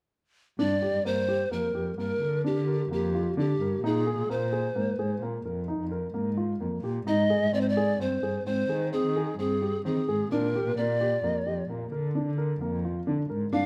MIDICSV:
0, 0, Header, 1, 4, 480
1, 0, Start_track
1, 0, Tempo, 462606
1, 607, Time_signature, 7, 2, 24, 8
1, 14172, End_track
2, 0, Start_track
2, 0, Title_t, "Pan flute"
2, 0, Program_c, 0, 75
2, 621, Note_on_c, 0, 74, 80
2, 1099, Note_on_c, 0, 72, 81
2, 1115, Note_off_c, 0, 74, 0
2, 1575, Note_off_c, 0, 72, 0
2, 1584, Note_on_c, 0, 70, 69
2, 2025, Note_off_c, 0, 70, 0
2, 2069, Note_on_c, 0, 70, 72
2, 2508, Note_off_c, 0, 70, 0
2, 2557, Note_on_c, 0, 67, 70
2, 2993, Note_off_c, 0, 67, 0
2, 3037, Note_on_c, 0, 67, 59
2, 3473, Note_off_c, 0, 67, 0
2, 3523, Note_on_c, 0, 67, 75
2, 3957, Note_off_c, 0, 67, 0
2, 4005, Note_on_c, 0, 68, 69
2, 4473, Note_on_c, 0, 72, 72
2, 4488, Note_off_c, 0, 68, 0
2, 5425, Note_off_c, 0, 72, 0
2, 7345, Note_on_c, 0, 75, 87
2, 7822, Note_on_c, 0, 74, 82
2, 7837, Note_off_c, 0, 75, 0
2, 7897, Note_on_c, 0, 72, 68
2, 7912, Note_off_c, 0, 74, 0
2, 7978, Note_on_c, 0, 74, 73
2, 7994, Note_off_c, 0, 72, 0
2, 8305, Note_off_c, 0, 74, 0
2, 8311, Note_on_c, 0, 72, 73
2, 8752, Note_off_c, 0, 72, 0
2, 8781, Note_on_c, 0, 72, 74
2, 9226, Note_off_c, 0, 72, 0
2, 9264, Note_on_c, 0, 68, 71
2, 9707, Note_off_c, 0, 68, 0
2, 9742, Note_on_c, 0, 68, 64
2, 10186, Note_off_c, 0, 68, 0
2, 10228, Note_on_c, 0, 68, 72
2, 10668, Note_off_c, 0, 68, 0
2, 10698, Note_on_c, 0, 70, 64
2, 11143, Note_off_c, 0, 70, 0
2, 11176, Note_on_c, 0, 74, 76
2, 12092, Note_off_c, 0, 74, 0
2, 14039, Note_on_c, 0, 77, 78
2, 14172, Note_off_c, 0, 77, 0
2, 14172, End_track
3, 0, Start_track
3, 0, Title_t, "Grand piano"
3, 0, Program_c, 1, 0
3, 611, Note_on_c, 1, 62, 74
3, 758, Note_off_c, 1, 62, 0
3, 855, Note_on_c, 1, 67, 65
3, 1001, Note_off_c, 1, 67, 0
3, 1093, Note_on_c, 1, 58, 64
3, 1239, Note_off_c, 1, 58, 0
3, 1332, Note_on_c, 1, 67, 60
3, 1479, Note_off_c, 1, 67, 0
3, 1569, Note_on_c, 1, 58, 61
3, 1717, Note_off_c, 1, 58, 0
3, 1813, Note_on_c, 1, 67, 59
3, 1960, Note_off_c, 1, 67, 0
3, 2052, Note_on_c, 1, 58, 60
3, 2200, Note_off_c, 1, 58, 0
3, 2297, Note_on_c, 1, 70, 53
3, 2443, Note_off_c, 1, 70, 0
3, 2536, Note_on_c, 1, 62, 60
3, 2682, Note_off_c, 1, 62, 0
3, 2774, Note_on_c, 1, 70, 57
3, 2921, Note_off_c, 1, 70, 0
3, 3021, Note_on_c, 1, 58, 66
3, 3167, Note_off_c, 1, 58, 0
3, 3263, Note_on_c, 1, 65, 59
3, 3408, Note_off_c, 1, 65, 0
3, 3499, Note_on_c, 1, 62, 64
3, 3645, Note_off_c, 1, 62, 0
3, 3745, Note_on_c, 1, 70, 58
3, 3890, Note_off_c, 1, 70, 0
3, 3983, Note_on_c, 1, 63, 81
3, 4128, Note_off_c, 1, 63, 0
3, 4220, Note_on_c, 1, 68, 64
3, 4366, Note_off_c, 1, 68, 0
3, 4455, Note_on_c, 1, 58, 65
3, 4603, Note_off_c, 1, 58, 0
3, 4696, Note_on_c, 1, 68, 61
3, 4843, Note_off_c, 1, 68, 0
3, 4934, Note_on_c, 1, 58, 65
3, 5082, Note_off_c, 1, 58, 0
3, 5177, Note_on_c, 1, 68, 58
3, 5325, Note_off_c, 1, 68, 0
3, 5418, Note_on_c, 1, 58, 62
3, 5565, Note_off_c, 1, 58, 0
3, 5660, Note_on_c, 1, 70, 58
3, 5807, Note_off_c, 1, 70, 0
3, 5894, Note_on_c, 1, 63, 64
3, 6043, Note_off_c, 1, 63, 0
3, 6136, Note_on_c, 1, 70, 58
3, 6284, Note_off_c, 1, 70, 0
3, 6369, Note_on_c, 1, 58, 68
3, 6519, Note_off_c, 1, 58, 0
3, 6613, Note_on_c, 1, 65, 57
3, 6762, Note_off_c, 1, 65, 0
3, 6853, Note_on_c, 1, 58, 61
3, 7002, Note_off_c, 1, 58, 0
3, 7094, Note_on_c, 1, 67, 60
3, 7243, Note_off_c, 1, 67, 0
3, 7334, Note_on_c, 1, 63, 81
3, 7483, Note_off_c, 1, 63, 0
3, 7576, Note_on_c, 1, 68, 62
3, 7724, Note_off_c, 1, 68, 0
3, 7813, Note_on_c, 1, 60, 63
3, 7963, Note_off_c, 1, 60, 0
3, 8062, Note_on_c, 1, 68, 68
3, 8208, Note_off_c, 1, 68, 0
3, 8299, Note_on_c, 1, 60, 61
3, 8446, Note_off_c, 1, 60, 0
3, 8539, Note_on_c, 1, 68, 58
3, 8686, Note_off_c, 1, 68, 0
3, 8785, Note_on_c, 1, 60, 64
3, 8930, Note_off_c, 1, 60, 0
3, 9021, Note_on_c, 1, 68, 51
3, 9168, Note_off_c, 1, 68, 0
3, 9265, Note_on_c, 1, 60, 66
3, 9410, Note_off_c, 1, 60, 0
3, 9508, Note_on_c, 1, 68, 61
3, 9652, Note_off_c, 1, 68, 0
3, 9742, Note_on_c, 1, 60, 57
3, 9888, Note_off_c, 1, 60, 0
3, 9980, Note_on_c, 1, 67, 57
3, 10127, Note_off_c, 1, 67, 0
3, 10221, Note_on_c, 1, 60, 64
3, 10367, Note_off_c, 1, 60, 0
3, 10464, Note_on_c, 1, 68, 61
3, 10609, Note_off_c, 1, 68, 0
3, 10707, Note_on_c, 1, 62, 74
3, 10851, Note_off_c, 1, 62, 0
3, 10953, Note_on_c, 1, 67, 65
3, 11095, Note_off_c, 1, 67, 0
3, 11185, Note_on_c, 1, 58, 68
3, 11329, Note_off_c, 1, 58, 0
3, 11422, Note_on_c, 1, 67, 65
3, 11567, Note_off_c, 1, 67, 0
3, 11659, Note_on_c, 1, 58, 60
3, 11805, Note_off_c, 1, 58, 0
3, 11896, Note_on_c, 1, 67, 53
3, 12043, Note_off_c, 1, 67, 0
3, 12135, Note_on_c, 1, 58, 57
3, 12281, Note_off_c, 1, 58, 0
3, 12368, Note_on_c, 1, 70, 58
3, 12517, Note_off_c, 1, 70, 0
3, 12608, Note_on_c, 1, 62, 63
3, 12756, Note_off_c, 1, 62, 0
3, 12844, Note_on_c, 1, 70, 64
3, 12993, Note_off_c, 1, 70, 0
3, 13086, Note_on_c, 1, 58, 62
3, 13234, Note_off_c, 1, 58, 0
3, 13330, Note_on_c, 1, 65, 55
3, 13477, Note_off_c, 1, 65, 0
3, 13561, Note_on_c, 1, 62, 63
3, 13711, Note_off_c, 1, 62, 0
3, 13796, Note_on_c, 1, 70, 58
3, 13947, Note_off_c, 1, 70, 0
3, 14036, Note_on_c, 1, 62, 77
3, 14172, Note_off_c, 1, 62, 0
3, 14172, End_track
4, 0, Start_track
4, 0, Title_t, "Cello"
4, 0, Program_c, 2, 42
4, 604, Note_on_c, 2, 43, 74
4, 947, Note_off_c, 2, 43, 0
4, 969, Note_on_c, 2, 43, 69
4, 1077, Note_off_c, 2, 43, 0
4, 1083, Note_on_c, 2, 43, 68
4, 1541, Note_off_c, 2, 43, 0
4, 1564, Note_on_c, 2, 41, 68
4, 1680, Note_off_c, 2, 41, 0
4, 1806, Note_on_c, 2, 41, 63
4, 2036, Note_off_c, 2, 41, 0
4, 2044, Note_on_c, 2, 43, 64
4, 2275, Note_off_c, 2, 43, 0
4, 2291, Note_on_c, 2, 50, 64
4, 2632, Note_off_c, 2, 50, 0
4, 2646, Note_on_c, 2, 50, 67
4, 2990, Note_off_c, 2, 50, 0
4, 3007, Note_on_c, 2, 41, 81
4, 3465, Note_off_c, 2, 41, 0
4, 3495, Note_on_c, 2, 50, 67
4, 3608, Note_off_c, 2, 50, 0
4, 3733, Note_on_c, 2, 43, 72
4, 3961, Note_off_c, 2, 43, 0
4, 3973, Note_on_c, 2, 46, 76
4, 4315, Note_off_c, 2, 46, 0
4, 4330, Note_on_c, 2, 46, 70
4, 4446, Note_off_c, 2, 46, 0
4, 4454, Note_on_c, 2, 46, 70
4, 4910, Note_off_c, 2, 46, 0
4, 4930, Note_on_c, 2, 44, 64
4, 5047, Note_off_c, 2, 44, 0
4, 5169, Note_on_c, 2, 44, 69
4, 5400, Note_off_c, 2, 44, 0
4, 5411, Note_on_c, 2, 46, 64
4, 5641, Note_off_c, 2, 46, 0
4, 5654, Note_on_c, 2, 41, 72
4, 5997, Note_off_c, 2, 41, 0
4, 6014, Note_on_c, 2, 41, 67
4, 6357, Note_off_c, 2, 41, 0
4, 6369, Note_on_c, 2, 44, 76
4, 6828, Note_off_c, 2, 44, 0
4, 6850, Note_on_c, 2, 41, 72
4, 6967, Note_off_c, 2, 41, 0
4, 7088, Note_on_c, 2, 46, 71
4, 7320, Note_off_c, 2, 46, 0
4, 7330, Note_on_c, 2, 44, 80
4, 7675, Note_off_c, 2, 44, 0
4, 7692, Note_on_c, 2, 44, 72
4, 7804, Note_off_c, 2, 44, 0
4, 7810, Note_on_c, 2, 44, 72
4, 8268, Note_off_c, 2, 44, 0
4, 8294, Note_on_c, 2, 43, 68
4, 8409, Note_off_c, 2, 43, 0
4, 8536, Note_on_c, 2, 43, 66
4, 8764, Note_off_c, 2, 43, 0
4, 8775, Note_on_c, 2, 44, 69
4, 9004, Note_off_c, 2, 44, 0
4, 9017, Note_on_c, 2, 51, 73
4, 9358, Note_off_c, 2, 51, 0
4, 9378, Note_on_c, 2, 51, 76
4, 9718, Note_off_c, 2, 51, 0
4, 9740, Note_on_c, 2, 43, 82
4, 10193, Note_off_c, 2, 43, 0
4, 10222, Note_on_c, 2, 51, 63
4, 10333, Note_off_c, 2, 51, 0
4, 10460, Note_on_c, 2, 44, 72
4, 10685, Note_off_c, 2, 44, 0
4, 10695, Note_on_c, 2, 46, 71
4, 11035, Note_off_c, 2, 46, 0
4, 11057, Note_on_c, 2, 46, 76
4, 11170, Note_off_c, 2, 46, 0
4, 11176, Note_on_c, 2, 46, 71
4, 11629, Note_off_c, 2, 46, 0
4, 11648, Note_on_c, 2, 41, 65
4, 11764, Note_off_c, 2, 41, 0
4, 11894, Note_on_c, 2, 41, 66
4, 12120, Note_off_c, 2, 41, 0
4, 12130, Note_on_c, 2, 46, 62
4, 12358, Note_off_c, 2, 46, 0
4, 12369, Note_on_c, 2, 50, 69
4, 12710, Note_off_c, 2, 50, 0
4, 12722, Note_on_c, 2, 50, 70
4, 13066, Note_off_c, 2, 50, 0
4, 13081, Note_on_c, 2, 41, 85
4, 13538, Note_off_c, 2, 41, 0
4, 13562, Note_on_c, 2, 50, 64
4, 13678, Note_off_c, 2, 50, 0
4, 13802, Note_on_c, 2, 44, 73
4, 14031, Note_off_c, 2, 44, 0
4, 14038, Note_on_c, 2, 43, 80
4, 14172, Note_off_c, 2, 43, 0
4, 14172, End_track
0, 0, End_of_file